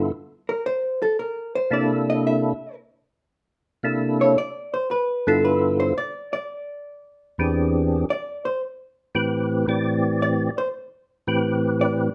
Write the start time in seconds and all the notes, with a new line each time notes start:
Already playing: G2 D3 B3 E4 F4 A4
0.49 A#4
0.66 C5
1.02 A4
1.19 A#4
1.55 C5
1.71 C3 A#3 D4 E4 A4 D5
2.10 D#5
2.27 E5
3.83 C3 A#3 D4 E4 A4
4.21 C#5
4.38 D5
4.74 C5
4.91 B4
5.27 G2 D3 B3 E4 F4 A4
5.45 B4
5.80 C5
5.98 D5
6.33 D5
7.38 E2 E3 C4 D4 G4 G#4
8.10 D5
8.45 C5
9.15 A2 E3 C4 G4 B4
9.68 A2 E3 C4 G4 D5
10.22 D5
10.58 C5
11.27 A2 E3 C4 G4 B4
11.81 D5